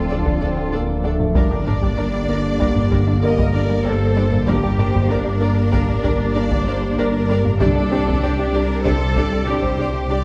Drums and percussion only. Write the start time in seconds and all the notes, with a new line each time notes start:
0.26 taiko
1.20 taiko low-mid
1.35 taiko
1.66 taiko low-mid
1.82 taiko
2.60 taiko
2.76 taiko low-mid
2.92 taiko
3.38 taiko
4.32 taiko low-mid
4.47 taiko
4.79 taiko low-mid
4.94 taiko
5.73 taiko
5.88 taiko low-mid
6.04 taiko
6.51 taiko
7.45 taiko low-mid
7.60 taiko
8.07 taiko
8.85 taiko
9.16 taiko
9.63 taiko